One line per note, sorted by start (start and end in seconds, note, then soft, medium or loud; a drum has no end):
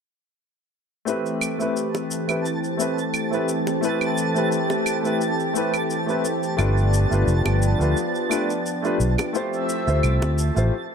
1.05 6.55 E3 medium
1.05 1.55 A3 medium
1.05 6.55 A3 medium
1.05 1.55 C4 medium
1.05 6.55 C4 medium
1.05 1.56 E4 medium
1.05 10.69 G4 medium
1.05 1.56 G4 medium
1.05 1.56 B4 medium
1.05 10.72 A5 medium
1.05 shaker soft
1.26 shaker soft
1.41 claves medium
1.41 shaker medium
1.58 2.24 A3 medium
1.58 2.24 C4 medium
1.58 2.25 E4 medium
1.58 2.25 G4 medium
1.58 2.25 B4 medium
1.58 shaker soft
1.76 shaker soft
1.95 high bongo medium
1.95 shaker soft
2.11 shaker medium
2.27 2.44 A3 medium
2.27 2.44 C4 medium
2.27 2.45 E4 medium
2.27 2.45 G4 medium
2.27 2.45 B4 medium
2.27 claves medium
2.27 shaker soft
2.45 shaker soft
2.64 shaker soft
2.77 2.96 A3 medium
2.77 2.97 C4 medium
2.77 2.97 E4 medium
2.77 2.98 G4 medium
2.77 2.98 B4 medium
2.77 shaker medium
2.98 shaker soft
3.14 claves medium
3.14 shaker soft
3.31 3.47 A3 medium
3.31 3.48 C4 medium
3.31 3.48 E4 medium
3.31 3.48 G4 medium
3.31 3.49 B4 medium
3.31 shaker soft
3.49 shaker medium
3.67 high bongo medium
3.67 shaker soft
3.81 4.30 A3 medium
3.81 4.31 C4 medium
3.81 4.31 E4 medium
3.81 4.32 G4 medium
3.81 4.32 B4 medium
3.81 shaker soft
4.01 claves medium
4.01 shaker soft
4.17 shaker medium
4.34 5.00 A3 medium
4.34 5.00 C4 medium
4.34 5.00 E4 medium
4.34 5.01 G4 medium
4.34 5.01 B4 medium
4.34 shaker soft
4.52 shaker soft
4.70 high bongo medium
4.70 shaker soft
4.86 claves medium
4.86 shaker medium
5.03 5.19 A3 medium
5.03 5.20 C4 medium
5.03 5.20 E4 medium
5.03 5.21 G4 medium
5.03 5.21 B4 medium
5.03 shaker soft
5.21 shaker soft
5.40 shaker soft
5.54 5.72 A3 medium
5.54 5.73 C4 medium
5.54 5.73 E4 medium
5.54 5.74 G4 medium
5.54 5.74 B4 medium
5.54 shaker medium
5.74 claves medium
5.74 shaker soft
5.90 shaker soft
6.06 6.23 A3 medium
6.06 6.23 C4 medium
6.06 6.24 E4 medium
6.06 6.24 G4 medium
6.06 6.25 B4 medium
6.06 shaker soft
6.25 shaker medium
6.43 shaker soft
6.57 7.06 G1 medium
6.57 10.68 F3 medium
6.57 7.06 A3 medium
6.57 9.31 B3 medium
6.57 7.07 D4 medium
6.57 9.32 D4 medium
6.57 7.07 F4 medium
6.57 7.08 G4 medium
6.57 7.08 B4 medium
6.57 claves medium
6.57 shaker soft
6.78 shaker soft
6.93 shaker medium
7.10 7.25 G1 medium
7.10 7.75 A3 medium
7.10 7.76 D4 medium
7.10 7.76 F4 medium
7.10 7.77 G4 medium
7.10 7.77 B4 medium
7.10 shaker soft
7.27 7.43 F1 medium
7.27 shaker soft
7.46 7.73 G1 medium
7.46 high bongo medium
7.46 claves medium
7.46 shaker soft
7.62 shaker medium
7.78 7.93 D2 medium
7.78 7.95 A3 medium
7.78 7.96 D4 medium
7.78 7.96 F4 medium
7.78 7.97 G4 medium
7.78 7.97 B4 medium
7.78 shaker soft
7.97 shaker soft
8.15 shaker soft
8.29 8.48 A3 medium
8.29 8.49 D4 medium
8.29 8.49 F4 medium
8.29 8.49 G4 medium
8.29 8.50 B4 medium
8.29 claves medium
8.29 shaker medium
8.50 shaker soft
8.66 shaker soft
8.82 8.99 A3 medium
8.82 8.99 D4 medium
8.82 9.00 F4 medium
8.82 9.00 G4 medium
8.82 9.01 B4 medium
8.82 shaker soft
9.00 9.15 B1 medium
9.00 shaker medium
9.18 high bongo medium
9.18 claves medium
9.18 shaker soft
9.33 9.82 A3 medium
9.33 10.71 C4 medium
9.33 9.83 E4 medium
9.33 9.83 F4 medium
9.33 9.84 G4 medium
9.33 9.84 C5 medium
9.33 10.71 E5 medium
9.33 shaker soft
9.53 shaker soft
9.69 shaker medium
9.86 10.01 D2 medium
9.86 10.51 A3 medium
9.86 10.52 E4 medium
9.86 10.52 F4 medium
9.86 10.53 G4 medium
9.86 10.53 C5 medium
9.86 shaker soft
10.03 10.19 C2 medium
10.03 claves medium
10.03 shaker soft
10.22 10.50 D2 medium
10.22 high bongo medium
10.22 shaker soft
10.38 shaker medium
10.54 10.70 A1 medium
10.54 10.71 A3 medium
10.54 10.72 E4 medium
10.54 10.72 F4 medium
10.54 10.72 G4 medium
10.54 10.73 C5 medium
10.54 shaker soft